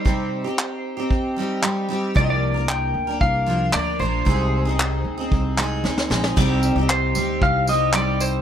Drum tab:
CC |----------------|----------------|----------------|x---------------|
TB |----------------|----------------|----------------|--x---x---x---x-|
CP |----x-------x---|----x-------x---|----x-----x-----|----x-------x---|
SD |----------------|----------------|------------oooo|----------------|
BD |o-------o-------|o-------o-------|o-------o-------|o-------o-------|